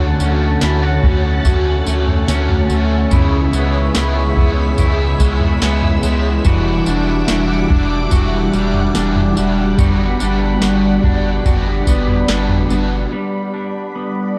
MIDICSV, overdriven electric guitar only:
0, 0, Header, 1, 2, 480
1, 0, Start_track
1, 0, Tempo, 833333
1, 1795, Time_signature, 4, 2, 24, 8
1, 8286, End_track
2, 0, Start_track
2, 0, Title_t, "Overdriven electric guitar"
2, 0, Program_c, 0, 29
2, 0, Note_on_c, 0, 50, 91
2, 0, Note_on_c, 0, 57, 106
2, 0, Note_on_c, 0, 61, 109
2, 0, Note_on_c, 0, 66, 112
2, 105, Note_off_c, 0, 66, 0
2, 112, Note_on_c, 0, 66, 57
2, 113, Note_off_c, 0, 50, 0
2, 117, Note_off_c, 0, 57, 0
2, 121, Note_off_c, 0, 61, 0
2, 130, Note_on_c, 0, 61, 54
2, 145, Note_on_c, 0, 57, 49
2, 348, Note_on_c, 0, 50, 62
2, 353, Note_off_c, 0, 66, 0
2, 354, Note_off_c, 0, 57, 0
2, 361, Note_on_c, 0, 57, 70
2, 363, Note_off_c, 0, 61, 0
2, 370, Note_on_c, 0, 61, 63
2, 380, Note_on_c, 0, 66, 82
2, 584, Note_off_c, 0, 66, 0
2, 590, Note_on_c, 0, 66, 55
2, 591, Note_off_c, 0, 50, 0
2, 598, Note_off_c, 0, 57, 0
2, 599, Note_off_c, 0, 61, 0
2, 606, Note_on_c, 0, 61, 52
2, 618, Note_on_c, 0, 57, 47
2, 828, Note_on_c, 0, 50, 82
2, 829, Note_off_c, 0, 57, 0
2, 833, Note_off_c, 0, 66, 0
2, 835, Note_off_c, 0, 61, 0
2, 836, Note_on_c, 0, 57, 82
2, 842, Note_on_c, 0, 61, 99
2, 850, Note_on_c, 0, 66, 98
2, 1057, Note_off_c, 0, 66, 0
2, 1064, Note_on_c, 0, 66, 52
2, 1071, Note_off_c, 0, 50, 0
2, 1074, Note_off_c, 0, 61, 0
2, 1075, Note_off_c, 0, 57, 0
2, 1081, Note_on_c, 0, 61, 51
2, 1094, Note_on_c, 0, 57, 47
2, 1305, Note_on_c, 0, 50, 57
2, 1309, Note_off_c, 0, 66, 0
2, 1310, Note_off_c, 0, 57, 0
2, 1317, Note_on_c, 0, 57, 67
2, 1318, Note_off_c, 0, 61, 0
2, 1325, Note_on_c, 0, 61, 64
2, 1337, Note_on_c, 0, 66, 66
2, 1538, Note_off_c, 0, 66, 0
2, 1545, Note_on_c, 0, 66, 59
2, 1550, Note_off_c, 0, 50, 0
2, 1555, Note_off_c, 0, 61, 0
2, 1556, Note_off_c, 0, 57, 0
2, 1562, Note_on_c, 0, 61, 54
2, 1575, Note_on_c, 0, 57, 51
2, 1789, Note_on_c, 0, 49, 91
2, 1790, Note_off_c, 0, 66, 0
2, 1794, Note_off_c, 0, 57, 0
2, 1796, Note_on_c, 0, 56, 101
2, 1798, Note_off_c, 0, 61, 0
2, 1803, Note_on_c, 0, 59, 108
2, 1807, Note_on_c, 0, 64, 92
2, 2020, Note_off_c, 0, 64, 0
2, 2027, Note_on_c, 0, 64, 56
2, 2032, Note_off_c, 0, 49, 0
2, 2035, Note_off_c, 0, 56, 0
2, 2039, Note_off_c, 0, 59, 0
2, 2046, Note_on_c, 0, 59, 49
2, 2059, Note_on_c, 0, 56, 44
2, 2267, Note_on_c, 0, 49, 63
2, 2271, Note_off_c, 0, 64, 0
2, 2272, Note_off_c, 0, 56, 0
2, 2279, Note_on_c, 0, 56, 76
2, 2280, Note_off_c, 0, 59, 0
2, 2287, Note_on_c, 0, 59, 72
2, 2297, Note_on_c, 0, 64, 83
2, 2498, Note_off_c, 0, 64, 0
2, 2505, Note_on_c, 0, 64, 64
2, 2511, Note_off_c, 0, 49, 0
2, 2515, Note_off_c, 0, 59, 0
2, 2517, Note_off_c, 0, 56, 0
2, 2522, Note_on_c, 0, 59, 55
2, 2536, Note_on_c, 0, 56, 47
2, 2746, Note_on_c, 0, 49, 93
2, 2748, Note_off_c, 0, 56, 0
2, 2750, Note_off_c, 0, 64, 0
2, 2754, Note_off_c, 0, 59, 0
2, 2755, Note_on_c, 0, 56, 98
2, 2761, Note_on_c, 0, 59, 83
2, 2767, Note_on_c, 0, 64, 105
2, 2980, Note_off_c, 0, 64, 0
2, 2987, Note_on_c, 0, 64, 65
2, 2991, Note_off_c, 0, 49, 0
2, 2995, Note_off_c, 0, 56, 0
2, 2998, Note_off_c, 0, 59, 0
2, 3004, Note_on_c, 0, 59, 50
2, 3016, Note_on_c, 0, 56, 49
2, 3227, Note_on_c, 0, 49, 57
2, 3231, Note_off_c, 0, 64, 0
2, 3233, Note_off_c, 0, 56, 0
2, 3239, Note_off_c, 0, 59, 0
2, 3240, Note_on_c, 0, 56, 72
2, 3251, Note_on_c, 0, 59, 70
2, 3259, Note_on_c, 0, 64, 67
2, 3460, Note_off_c, 0, 64, 0
2, 3467, Note_on_c, 0, 64, 58
2, 3471, Note_off_c, 0, 49, 0
2, 3476, Note_off_c, 0, 59, 0
2, 3477, Note_off_c, 0, 56, 0
2, 3483, Note_on_c, 0, 59, 52
2, 3496, Note_on_c, 0, 56, 48
2, 3711, Note_off_c, 0, 64, 0
2, 3713, Note_on_c, 0, 52, 95
2, 3719, Note_off_c, 0, 56, 0
2, 3719, Note_off_c, 0, 59, 0
2, 3721, Note_on_c, 0, 55, 93
2, 3729, Note_on_c, 0, 62, 105
2, 3734, Note_on_c, 0, 66, 106
2, 3943, Note_off_c, 0, 66, 0
2, 3950, Note_on_c, 0, 66, 60
2, 3954, Note_off_c, 0, 52, 0
2, 3958, Note_off_c, 0, 55, 0
2, 3960, Note_off_c, 0, 62, 0
2, 3967, Note_on_c, 0, 62, 52
2, 3981, Note_on_c, 0, 55, 44
2, 4191, Note_on_c, 0, 52, 71
2, 4192, Note_off_c, 0, 66, 0
2, 4198, Note_off_c, 0, 55, 0
2, 4201, Note_off_c, 0, 62, 0
2, 4205, Note_on_c, 0, 55, 67
2, 4215, Note_on_c, 0, 62, 71
2, 4222, Note_on_c, 0, 66, 75
2, 4418, Note_off_c, 0, 66, 0
2, 4425, Note_on_c, 0, 66, 62
2, 4433, Note_off_c, 0, 52, 0
2, 4437, Note_off_c, 0, 62, 0
2, 4440, Note_off_c, 0, 55, 0
2, 4444, Note_on_c, 0, 62, 56
2, 4458, Note_on_c, 0, 55, 53
2, 4668, Note_on_c, 0, 52, 93
2, 4670, Note_off_c, 0, 66, 0
2, 4671, Note_off_c, 0, 55, 0
2, 4678, Note_on_c, 0, 55, 81
2, 4679, Note_off_c, 0, 62, 0
2, 4687, Note_on_c, 0, 62, 92
2, 4691, Note_on_c, 0, 66, 96
2, 4900, Note_off_c, 0, 66, 0
2, 4907, Note_on_c, 0, 66, 60
2, 4911, Note_off_c, 0, 52, 0
2, 4916, Note_off_c, 0, 55, 0
2, 4918, Note_off_c, 0, 62, 0
2, 4925, Note_on_c, 0, 62, 55
2, 4936, Note_on_c, 0, 55, 46
2, 5144, Note_on_c, 0, 52, 58
2, 5148, Note_off_c, 0, 55, 0
2, 5151, Note_off_c, 0, 66, 0
2, 5155, Note_on_c, 0, 55, 60
2, 5159, Note_off_c, 0, 62, 0
2, 5166, Note_on_c, 0, 62, 70
2, 5174, Note_on_c, 0, 66, 66
2, 5375, Note_off_c, 0, 66, 0
2, 5382, Note_on_c, 0, 66, 58
2, 5389, Note_off_c, 0, 52, 0
2, 5394, Note_off_c, 0, 62, 0
2, 5395, Note_off_c, 0, 55, 0
2, 5401, Note_on_c, 0, 62, 48
2, 5414, Note_on_c, 0, 55, 47
2, 5622, Note_off_c, 0, 55, 0
2, 5628, Note_off_c, 0, 66, 0
2, 5629, Note_on_c, 0, 55, 90
2, 5636, Note_off_c, 0, 62, 0
2, 5638, Note_on_c, 0, 59, 94
2, 5642, Note_on_c, 0, 62, 98
2, 5651, Note_on_c, 0, 66, 101
2, 5863, Note_off_c, 0, 66, 0
2, 5870, Note_on_c, 0, 66, 61
2, 5872, Note_off_c, 0, 55, 0
2, 5876, Note_off_c, 0, 59, 0
2, 5879, Note_off_c, 0, 62, 0
2, 5887, Note_on_c, 0, 62, 46
2, 5902, Note_on_c, 0, 59, 46
2, 6107, Note_on_c, 0, 55, 70
2, 6110, Note_off_c, 0, 59, 0
2, 6112, Note_off_c, 0, 66, 0
2, 6117, Note_on_c, 0, 59, 69
2, 6121, Note_off_c, 0, 62, 0
2, 6128, Note_on_c, 0, 62, 71
2, 6136, Note_on_c, 0, 66, 74
2, 6341, Note_off_c, 0, 66, 0
2, 6348, Note_on_c, 0, 66, 68
2, 6351, Note_off_c, 0, 55, 0
2, 6356, Note_off_c, 0, 59, 0
2, 6359, Note_off_c, 0, 62, 0
2, 6366, Note_on_c, 0, 62, 57
2, 6381, Note_on_c, 0, 59, 50
2, 6589, Note_off_c, 0, 59, 0
2, 6589, Note_on_c, 0, 55, 89
2, 6591, Note_off_c, 0, 66, 0
2, 6596, Note_on_c, 0, 59, 81
2, 6598, Note_off_c, 0, 62, 0
2, 6605, Note_on_c, 0, 62, 89
2, 6611, Note_on_c, 0, 66, 97
2, 6821, Note_off_c, 0, 66, 0
2, 6828, Note_on_c, 0, 66, 60
2, 6832, Note_off_c, 0, 55, 0
2, 6835, Note_off_c, 0, 59, 0
2, 6837, Note_off_c, 0, 62, 0
2, 6844, Note_on_c, 0, 62, 49
2, 6859, Note_on_c, 0, 59, 51
2, 7069, Note_on_c, 0, 55, 59
2, 7071, Note_off_c, 0, 66, 0
2, 7075, Note_off_c, 0, 59, 0
2, 7079, Note_off_c, 0, 62, 0
2, 7082, Note_on_c, 0, 59, 73
2, 7088, Note_on_c, 0, 62, 71
2, 7099, Note_on_c, 0, 66, 72
2, 7301, Note_off_c, 0, 66, 0
2, 7308, Note_on_c, 0, 66, 67
2, 7312, Note_off_c, 0, 55, 0
2, 7318, Note_off_c, 0, 59, 0
2, 7318, Note_off_c, 0, 62, 0
2, 7324, Note_on_c, 0, 62, 50
2, 7339, Note_on_c, 0, 59, 46
2, 7551, Note_off_c, 0, 66, 0
2, 7560, Note_off_c, 0, 62, 0
2, 7567, Note_off_c, 0, 59, 0
2, 8286, End_track
0, 0, End_of_file